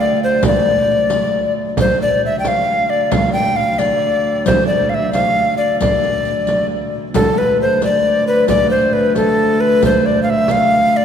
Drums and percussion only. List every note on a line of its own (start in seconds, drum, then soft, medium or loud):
0.21 frame drum soft
0.43 riq medium
0.43 frame drum medium
1.10 riq soft
1.10 frame drum medium
1.77 riq medium
1.77 frame drum medium
2.00 frame drum soft
2.22 frame drum soft
2.45 riq medium
2.45 frame drum medium
3.12 riq medium
3.12 frame drum medium
3.34 frame drum soft
3.57 frame drum soft
3.79 riq soft
3.79 frame drum medium
4.25 frame drum soft
4.46 riq medium
4.46 frame drum medium
4.71 frame drum soft
4.93 frame drum soft
5.13 riq soft
5.13 frame drum medium
5.59 frame drum soft
5.81 riq medium
5.81 frame drum medium
6.03 riq soft
6.03 frame drum soft
6.25 riq soft
6.25 frame drum soft
6.47 riq soft
6.47 frame drum medium
6.71 frame drum soft
6.94 frame drum soft
7.14 riq medium
7.14 frame drum medium
7.38 frame drum soft
7.61 frame drum soft
7.82 riq soft
7.82 frame drum medium
8.27 frame drum soft
8.48 riq medium
8.48 frame drum medium
8.71 frame drum soft
8.93 frame drum soft
9.15 riq soft
9.15 frame drum medium
9.61 frame drum soft
9.83 riq medium
9.83 frame drum medium
10.05 frame drum soft
10.27 frame drum soft
10.48 riq soft
10.48 frame drum medium
10.93 frame drum soft